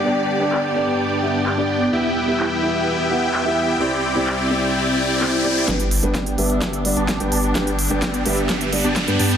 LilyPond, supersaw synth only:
\new Staff \with { instrumentName = "Supersaw synth" } { \time 4/4 \key g \major \tempo 4 = 128 <b d' g' d'' g''>1 | <b e' g' e'' g''>1 | <c' e' g' d'' g''>1 | <b d' g' d'' g''>16 r8 <b d' g' d'' g''>8. <b d' g' d'' e''>4 r16 <b d' g' d'' a''>8 <b d' g' d'' g''>16 <b d' g' d'' a''>8 |
<b d' g' d'' g''>16 r8 <b d' g' d'' g''>8. <b d' g' d'' e''>4 r16 <b d' g' d'' a''>8 <b d' g' d'' g''>16 <b d' g' d'' a''>8 | }